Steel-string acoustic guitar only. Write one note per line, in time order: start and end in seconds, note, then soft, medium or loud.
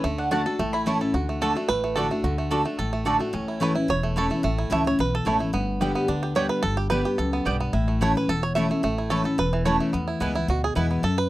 0.04 0.30 D3 medium
0.31 0.45 D3 loud
0.31 0.45 A3 medium
0.31 0.46 D4 medium
0.31 0.44 F#4 loud
0.46 0.59 D4 medium
0.46 0.58 F#4 medium
0.59 1.12 A2 medium
0.86 1.00 E3 medium
0.86 1.00 A3 loud
0.86 1.01 C#4 loud
0.86 1.00 E4 loud
1.01 1.14 C#4 medium
1.01 1.13 E4 medium
1.14 1.40 D3 medium
1.42 1.55 D3 medium
1.42 1.56 A3 medium
1.42 1.56 D4 medium
1.42 1.54 F#4 loud
1.55 1.69 D4 medium
1.55 1.68 F#4 medium
1.70 2.22 A2 medium
1.97 2.10 D3 loud
1.97 2.11 A3 medium
1.97 2.10 D4 medium
1.97 2.09 F#4 loud
2.10 2.24 D4 soft
2.10 2.23 F#4 medium
2.24 2.49 D3 medium
2.51 2.65 D3 medium
2.51 2.65 A3 loud
2.51 2.65 D4 loud
2.51 2.64 F#4 loud
2.65 2.79 D4 medium
2.65 2.78 F#4 medium
2.79 3.31 A2 medium
3.05 3.20 D3 medium
3.05 3.20 A3 medium
3.05 3.20 D4 loud
3.05 3.18 F#4 loud
3.19 3.34 D4 medium
3.19 3.33 F#4 medium
3.33 3.86 A2 medium
3.60 3.75 E3 loud
3.60 3.75 A3 loud
3.60 3.75 C#4 loud
3.60 3.73 E4 loud
3.75 3.89 C#4 medium
3.75 3.88 E4 medium
3.88 4.41 E2 loud
4.16 4.30 E3 medium
4.16 4.30 A3 medium
4.16 4.30 C#4 loud
4.16 4.29 E4 medium
4.30 4.44 C#4 soft
4.30 4.43 E4 medium
4.43 4.96 A2 medium
4.70 4.84 E3 loud
4.70 4.85 A3 loud
4.70 4.85 C#4 loud
4.70 4.83 E4 loud
4.84 4.99 C#4 medium
4.84 4.98 E4 medium
4.99 5.51 E2 medium
5.25 5.40 E3 medium
5.25 5.40 A3 medium
5.25 5.40 C#4 medium
5.25 5.38 E4 loud
5.39 5.54 C#4 soft
5.39 5.53 E4 medium
5.53 6.06 G2 medium
5.81 6.07 D3 loud
5.81 6.07 G3 medium
5.81 6.08 B3 loud
5.81 6.08 G4 loud
6.08 6.34 D3 loud
6.35 6.62 D3 medium
6.35 6.62 G3 medium
6.35 6.62 B3 medium
6.35 6.63 G4 loud
6.63 7.16 G2 medium
6.90 7.05 D3 medium
6.90 7.05 G3 medium
6.90 7.05 B3 loud
6.90 7.04 G4 loud
7.05 7.19 B3 medium
7.05 7.18 G4 medium
7.19 7.45 F#2 medium
7.46 7.72 G2 medium
7.73 8.26 A2 medium
8.01 8.15 E3 loud
8.01 8.15 A3 loud
8.01 8.15 C#4 loud
8.01 8.14 E4 loud
8.15 8.29 C#4 medium
8.15 8.28 E4 medium
8.29 8.81 E2 loud
8.56 8.70 E3 medium
8.56 8.70 A3 medium
8.56 8.70 C#4 medium
8.56 8.68 E4 loud
8.70 8.84 C#4 soft
8.70 8.83 E4 medium
8.83 9.36 A2 medium
9.10 9.24 E3 medium
9.10 9.25 A3 medium
9.10 9.24 C#4 loud
9.10 9.23 E4 loud
9.24 9.38 C#4 medium
9.24 9.37 E4 medium
9.38 9.91 E2 medium
9.66 9.92 E3 medium
9.66 9.92 A3 loud
9.66 9.92 C#4 loud
9.66 9.93 E4 loud
9.94 10.46 E2 medium
10.20 10.34 E3 loud
10.20 10.35 G#3 loud
10.20 10.35 B3 loud
10.20 10.34 E4 loud
10.35 10.49 B3 medium
10.35 10.48 E4 medium
10.48 11.01 B2 medium
10.75 11.02 E3 medium
10.75 11.02 G#3 medium
10.75 11.03 B3 medium
10.75 11.03 E4 loud
11.03 11.29 F#2 medium